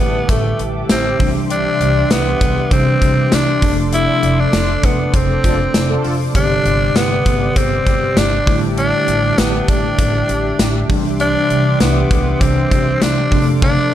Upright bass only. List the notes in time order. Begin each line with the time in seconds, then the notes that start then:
0.00 A1
0.29 A1
0.59 A1
0.90 A1
1.20 C2
1.80 C2
2.11 C2
2.41 C2
2.71 C2
3.02 C2
3.32 C2
3.62 F1
4.23 F1
4.53 F1
4.83 F1
5.14 F1
5.44 F1
5.74 F1
6.05 F1
6.35 G1
6.65 G1
6.95 G1
7.26 G1
7.56 G1
7.87 G1
8.17 G1
8.47 A1
9.08 A1
9.38 A1
9.68 A1
9.99 A1
10.29 A1
10.59 A1
10.90 C2
11.50 C2
11.81 C2
12.11 C2
12.41 C2
12.71 C2
13.02 C2
13.32 F1